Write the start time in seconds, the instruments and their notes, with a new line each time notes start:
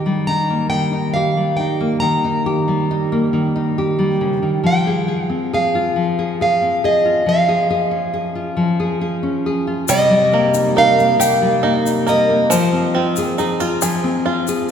Already playing: nylon-string guitar D#3 D#4 G4, steel-string acoustic guitar G5
0.06 nylon-string guitar G3
0.27 nylon-string guitar D#4, steel-string acoustic guitar A#5
0.50 nylon-string guitar A#3
0.70 nylon-string guitar D#3, steel-string acoustic guitar G5
0.93 nylon-string guitar D#4
1.14 nylon-string guitar G4, steel-string acoustic guitar F5
1.37 nylon-string guitar G3
1.57 nylon-string guitar D#4, steel-string acoustic guitar G5
1.81 nylon-string guitar A#3
2.00 nylon-string guitar D#3, steel-string acoustic guitar A#5
2.24 nylon-string guitar D#4
2.46 nylon-string guitar G4
2.68 nylon-string guitar G3
2.91 nylon-string guitar D#4
3.12 nylon-string guitar A#3
3.33 nylon-string guitar D#3
3.56 nylon-string guitar D#4
3.78 nylon-string guitar G4
3.99 nylon-string guitar G3
4.21 nylon-string guitar C#3
4.42 nylon-string guitar D#3
4.63 nylon-string guitar F3, steel-string acoustic guitar G5
4.87 nylon-string guitar G#4
5.08 nylon-string guitar G#4
5.26 steel-string acoustic guitar F5
5.30 nylon-string guitar C4
5.53 nylon-string guitar G#4, steel-string acoustic guitar F5
5.75 nylon-string guitar F4
5.96 nylon-string guitar F3
6.19 nylon-string guitar G#4
6.41 nylon-string guitar G#4, steel-string acoustic guitar F5
6.62 nylon-string guitar C4
6.84 nylon-string guitar G#4, steel-string acoustic guitar D#5
7.05 nylon-string guitar F4
7.26 nylon-string guitar F3, steel-string acoustic guitar F5
7.49 nylon-string guitar G#4
7.70 nylon-string guitar G#4
7.91 nylon-string guitar C#4
8.14 nylon-string guitar G#4
8.35 nylon-string guitar F4
8.57 nylon-string guitar F3
8.80 nylon-string guitar G#4
9.01 nylon-string guitar G#4
9.23 nylon-string guitar C#4
9.46 nylon-string guitar G#4
9.67 nylon-string guitar F4
9.88 nylon-string guitar C3, five-string banjo G3, steel-string acoustic guitar D#5, shaker
10.10 nylon-string guitar G3
10.32 nylon-string guitar A#3, five-string banjo A#3
10.54 nylon-string guitar D#4, shaker
10.76 five-string banjo D#4, nylon-string guitar A#4, steel-string acoustic guitar F5, shaker
10.99 nylon-string guitar A#3, shaker
11.19 nylon-string guitar C3, five-string banjo G4, shaker
11.42 nylon-string guitar G3
11.63 nylon-string guitar A#3, five-string banjo D#4
11.86 nylon-string guitar D#4, shaker
12.07 five-string banjo A#3, nylon-string guitar A#4, steel-string acoustic guitar D#5, shaker
12.30 nylon-string guitar A#3
12.50 five-string banjo F3, nylon-string guitar F3, steel-string acoustic guitar C5, shaker
12.73 nylon-string guitar C4
12.95 five-string banjo C4, nylon-string guitar F4
13.16 nylon-string guitar G#4, shaker
13.38 five-string banjo D#4, nylon-string guitar G#4, shaker
13.60 five-string banjo F4, nylon-string guitar F4, shaker
13.82 nylon-string guitar F3, five-string banjo G#4, shaker
14.04 nylon-string guitar C4
14.26 five-string banjo F4, nylon-string guitar F4
14.47 nylon-string guitar G#4, shaker